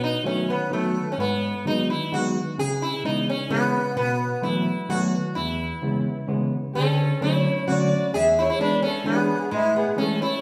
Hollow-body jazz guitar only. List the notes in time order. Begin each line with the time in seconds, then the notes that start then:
Already playing: B2
0.23 D#3 F#3 A3 B3
0.70 D#3 F#3 A3 B3
1.18 G#2
1.65 D#3 F#3 G#3 B3
2.12 D#3 F#3 G#3 B3
2.58 C#3
3.04 C#3 E3 G#3 B3
3.50 C#3 E3 G#3 B3
3.96 B2
4.42 E3 F#3 A3 B3
4.89 D#3 F#3 A3 B3
5.36 E2
5.82 C#3 E3 G#3 B3
6.27 C#3 E3 G#3 B3
6.76 D3
7.21 D3 F#3 A3 C#4
7.67 D3 F#3 A3 C#4
8.14 E2
8.59 E3 G#3 B3 D4
9.04 E3 G#3 B3 D4
9.51 A2
9.96 E3 G#3 A3 C#4